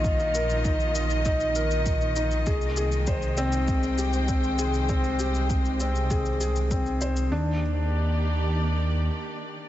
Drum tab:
SH |xxxxxxxxxxxxxxxx|xxxxxxxxxxxxxxxx|xxxxxxxxxxxxxxxx|----------------|
BD |o---o---o---o---|o---o---o---o---|o---o---o---o---|----------------|